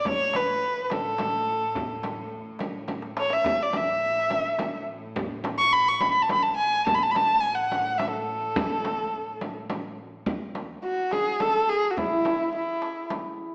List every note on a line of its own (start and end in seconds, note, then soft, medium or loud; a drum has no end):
0.05 0.38 C#5 medium
0.05 tombak dum medium
0.05 frame drum medium
0.33 0.84 B4 medium
0.33 tombak tek medium
0.33 frame drum medium
0.84 0.94 B4 medium
0.90 2.28 A4 medium
0.90 tombak tek medium
0.90 frame drum medium
1.18 tombak tek medium
1.18 frame drum medium
1.75 tombak dum medium
1.75 frame drum medium
2.03 tombak tek medium
2.03 frame drum medium
2.45 tombak ka soft
2.59 tombak tek medium
2.59 frame drum medium
2.88 tombak tek soft
2.88 frame drum medium
3.02 tombak ka medium
3.17 3.34 C#5 medium
3.17 tombak tek medium
3.30 3.64 E5 medium
3.30 tombak ka medium
3.44 6.86 A2 medium
3.44 tombak dum medium
3.44 frame drum medium
3.63 3.78 D5 medium
3.73 4.81 E5 medium
3.73 tombak tek medium
3.73 frame drum medium
4.30 tombak tek medium
4.30 frame drum medium
4.59 tombak tek medium
4.59 frame drum medium
5.16 frame drum medium
5.16 tombak dum medium
5.44 tombak tek medium
5.44 frame drum medium
5.59 5.74 C#6 loud
5.73 5.90 B5 loud
5.88 6.03 C#6 medium
6.01 6.11 B5 medium
6.01 tombak tek medium
6.01 frame drum medium
6.11 6.24 B5 medium
6.22 6.32 A5 medium
6.29 6.44 B5 medium
6.29 tombak tek medium
6.29 frame drum medium
6.43 6.56 A5 medium
6.57 6.84 G#5 medium
6.87 6.96 A5 medium
6.87 frame drum medium
6.87 tombak dum medium
6.94 7.04 B5 medium
7.03 7.13 A5 medium
7.11 7.17 B5 medium
7.11 tombak tek medium
7.16 7.42 A5 loud
7.16 frame drum medium
7.41 7.56 G#5 medium
7.55 7.99 F#5 medium
7.72 tombak tek medium
7.72 frame drum medium
7.98 8.12 E5 medium
7.98 tombak tek medium
7.98 frame drum medium
8.12 9.55 A4 medium
8.56 tombak dum loud
8.56 frame drum loud
8.85 tombak tek medium
8.85 frame drum medium
9.13 tombak ka soft
9.41 tombak tek medium
9.41 frame drum medium
9.70 tombak tek medium
9.70 frame drum medium
9.84 tombak ka soft
9.98 tombak ka soft
10.26 frame drum medium
10.26 tombak dum medium
10.55 tombak tek medium
10.55 frame drum medium
10.83 13.55 F#4 medium
10.83 11.14 F#4 medium
11.11 11.48 G#4 medium
11.11 11.42 G#4 medium
11.11 tombak tek medium
11.11 frame drum medium
11.40 11.71 A4 medium
11.40 11.76 A4 medium
11.40 tombak tek medium
11.40 frame drum medium
11.69 11.92 G#4 medium
11.69 13.55 G#4 medium
11.69 tombak ka soft
11.91 11.99 F#4 medium
11.97 12.54 E4 medium
11.97 12.06 E4 medium
11.97 tombak dum medium
11.97 frame drum medium
12.06 12.13 E4 soft
12.13 12.20 E4 medium
12.20 12.26 E4 soft
12.25 12.34 E4 medium
12.25 tombak tek medium
12.25 frame drum medium
12.34 12.42 E4 medium
12.43 12.54 E4 medium
12.55 13.55 E4 medium
12.55 13.08 E4 medium
12.82 tombak tek medium
13.10 tombak tek medium
13.10 frame drum medium
13.39 tombak ka soft